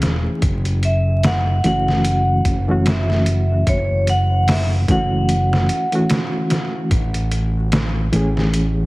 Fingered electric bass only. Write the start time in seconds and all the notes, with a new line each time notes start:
0.03 E1
0.43 F#1
1.65 F#1
2.46 F#1
3.67 F#1
4.89 F#1
6.91 A1
8.13 A1